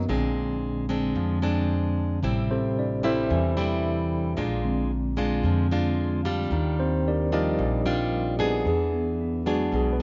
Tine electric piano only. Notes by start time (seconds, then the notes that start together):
Already playing: B3 D#4 F#4 A#4 B4
0.08 D3 G#3 C4
0.89 D3 G#3 C4
2.23 C3 G3
2.51 C4 G4 A4 C5
2.79 D4 D5
3.05 E4 A4 C5 E5
4.64 D3 G#3 C4
5.44 D3 G#3 C4
6.80 C4 C5
7.08 D4 G4 A#4 D5
7.31 F3 G3 D#4 G4 A#4 D5 D#5
8.68 G#4
8.93 B3
9.21 D4
9.45 F#3 G#3 D4 F#4
9.76 G#4
9.93 B4